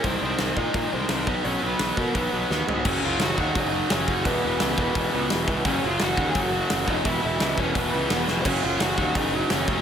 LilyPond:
<<
  \new Staff \with { instrumentName = "Lead electric guitar" } { \time 4/4 \key ges \lydian \tempo 4 = 171 <c' c''>8 <c' c''>4 <ees' ees''>4 <c' c''>8 <c' c''>8 <ees' ees''>8 | <des' des''>8 <ces' ces''>4 <bes bes'>8 <ces' ces''>4. r8 | <des' des''>8 <f' f''>8 <ges' ges''>8 <ges' ges''>8 <ees' ees''>4 <des' des''>4 | <b b'>4. <b b'>4. r4 |
<des' des''>8 <f' f''>8 <ges' ges''>8 <ges' ges''>16 <aes' aes''>16 <ges' ges''>4. <ees' ees''>8 | <e' e''>8 <e' e''>4 <des' des''>8 <b b'>4. r16. c''32 | <des' des''>8 <f' f''>8 <ges' ges''>8 <ges' ges''>8 <ees' ees''>4 <des' des''>4 | }
  \new Staff \with { instrumentName = "Overdriven electric guitar" } { \clef bass \time 4/4 \key ges \lydian <aes, ees aes>8 <aes, ees aes>8 <aes, ees aes>8 <aes, ees aes>8 <aes, ees aes>8 <aes, ees aes>8 <aes, ees aes>8 <ces ges ces'>8 | <ces ges ces'>8 <ces ges ces'>8 <ces ges ces'>8 <ces ges ces'>8 <ces ges ces'>8 <ces ges ces'>8 <ces ges ces'>8 <ces ges ces'>8 | <ges, des ges>8 <ges, des ges>8 <ges, des ges>8 <ges, des ges>8 <ges, des ges>8 <ges, des ges>8 <ges, des ges>8 <ges, des ges>8 | <e, b, e>8 <e, b, e>8 <e, b, e>8 <e, b, e>8 <e, b, e>8 <e, b, e>8 <e, b, e>8 <e, b, e>8 |
<ges, des ges>8 <ges, des ges>8 <ges, des ges>8 <ges, des ges>8 <ges, des ges>8 <ges, des ges>8 <ges, des ges>8 <ges, des ges>8 | <e, b, e>8 <e, b, e>8 <e, b, e>8 <e, b, e>8 <e, b, e>8 <e, b, e>8 <e, b, e>8 <e, b, e>8 | <ges, des ges>8 <ges, des ges>8 <ges, des ges>8 <ges, des ges>8 <ges, des ges>8 <ges, des ges>8 <ges, des ges>8 <ges, des ges>8 | }
  \new Staff \with { instrumentName = "Picked electric bass" } { \clef bass \time 4/4 \key ges \lydian c,8 c,8 c,8 bes,8 bes,8 c,8 c,8 ces,8 | ces,8 ces,8 ces,8 ces8 ces,8 ces,8 ees,8 aes,8 | ges,,8 ges,,8 ges,,8 ees,8 ges,,4 ges,,8 ges,,8 | e,,8 e,,8 des,8 e,,8 e,,8 des,8 e,,8 des,8 |
ges,,8 ges,,8 ges,,8 ees,8 ges,,4 ges,,8 f,,8 | e,,8 e,,8 des,8 e,,8 e,,8 des,8 e,,8 f,,8 | ges,,8 ges,,8 ges,,8 ees,8 ges,,4 ges,,8 f,,8 | }
  \new DrumStaff \with { instrumentName = "Drums" } \drummode { \time 4/4 <hho bd>4 <hho sn>8 bd8 <hho bd>4 <hho sn>8 bd8 | hho4 <hho sn>8 bd8 <hho bd>4 sn8 tomfh8 | <cymc bd>4 <hho sn>8 bd8 <hho bd>4 <hho sn>8 bd8 | <hho bd>4 <hho sn>8 bd8 <hho bd>4 <hho sn>8 bd8 |
<hho bd>4 <hho sn>8 bd8 <hho bd>4 <hho sn>8 bd8 | <hho bd>4 <hho sn>8 bd8 <hho bd>4 <hho sn>8 sn8 | <cymc hho bd>4 <hho sn>8 bd8 <hho bd>4 <hho sn>8 bd8 | }
>>